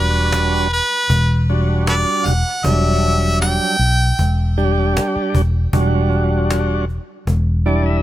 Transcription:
Already playing: E1 G3 D4 F#4 B4
0.32 cajon slap
0.71 B4, cajon slap
1.09 E1, cajon bass, cajon slap
1.48 G3 D4 F#4, cajon slap
1.87 A4 B4 D5, cajon slap
2.25 E1 F#5, cajon bass
2.64 E1 F#3 G3 D4 E5, cajon bass
3.41 G5, cajon slap
3.79 B1, cajon slap
4.19 E1, cajon bass
4.57 G3 D4 G4, cajon slap
4.97 cajon slap
5.16 muted fingered electric bass stroke
5.35 E1, cajon bass
5.73 E1 G3 D4 F#4, cajon bass
6.12 cajon slap
6.51 cajon slap
6.89 cajon slap
7.27 E1, cajon bass, cajon slap
7.66 G3 D4 E4 D5, cajon slap
7.86 E5

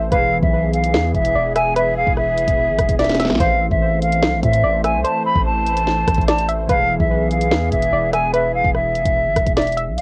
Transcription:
Already playing: A3 E5
0.09 E1 E3 G#3 B3 G#4 B4 F5, kick, closed hi-hat
0.13 G#4 B4
0.42 B1 E5, kick
0.73 F5, closed hi-hat
0.84 closed hi-hat
0.94 E2, snare
1.14 E1 E5, kick, closed hi-hat
1.25 closed hi-hat
1.35 E1 D5
1.55 E5 G#5, cross-stick, closed hi-hat
1.76 B4 E5, closed hi-hat
1.97 F5
2.07 E1, kick
2.17 E5, cross-stick
2.38 F1, closed hi-hat
2.48 E1, kick, closed hi-hat
2.69 G#1
2.79 E1, kick, cross-stick, closed hi-hat
2.89 E1, kick, closed hi-hat
2.99 D5 E5, snare, closed hi-hat
3.04 snare, closed hi-hat
3.10 snare, closed hi-hat
3.15 snare, closed hi-hat
3.20 E5, snare, closed hi-hat
3.25 snare
3.30 B1, snare
3.35 E3 A3, snare
3.40 A1 E3 A3 C4 A4 C5 F5, kick, closed hi-hat
3.71 A1 E5, kick
4.02 F5, closed hi-hat
4.12 closed hi-hat
4.23 C2, snare
4.33 A1
4.43 A2 E5, kick, closed hi-hat
4.53 closed hi-hat
4.64 A1 D5
4.84 E5 G#5, cross-stick, closed hi-hat
4.95 C2
5.04 C5 A5, closed hi-hat
5.25 B5
5.36 A1, kick
5.46 A5
5.66 closed hi-hat
5.77 closed hi-hat
5.87 snare
6.08 A1, kick, cross-stick, closed hi-hat
6.14 A1, kick, closed hi-hat
6.21 closed hi-hat
6.28 D5 A5, snare, closed hi-hat
6.38 closed hi-hat
6.48 E5, closed hi-hat
6.66 E1 E3 G#3 B3 G#4 B4 F5, kick, closed hi-hat
6.70 G#4 B4
7.00 B1 E5, kick
7.31 F5, closed hi-hat
7.41 closed hi-hat
7.51 E2, snare
7.72 E1 E5, kick, closed hi-hat
7.82 closed hi-hat
7.92 E1 D5
8.13 E5 G#5, cross-stick, closed hi-hat
8.33 B4 E5, closed hi-hat
8.54 F5
8.64 E1, kick
8.75 E5, cross-stick
8.95 F1, closed hi-hat
9.05 E1, kick, closed hi-hat
9.26 G#1
9.36 E1, kick, cross-stick, closed hi-hat
9.47 E1, kick, closed hi-hat
9.57 D5 E5, snare, closed hi-hat
9.62 closed hi-hat
9.67 closed hi-hat
9.72 closed hi-hat
9.77 E5, closed hi-hat
9.88 B1
9.97 F5, closed hi-hat

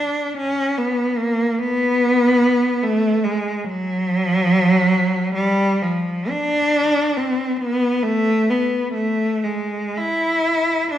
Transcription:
Already playing: D4
0.38 C#4
0.78 B3
1.18 A#3
1.59 B3
2.83 A3
3.24 G#3
3.65 F#3
5.35 G3
5.82 F3
6.30 D4
7.17 C4
7.61 B3
8.03 A3
8.50 B3
8.94 A3
9.44 G#3
9.97 E4
10.92 D4

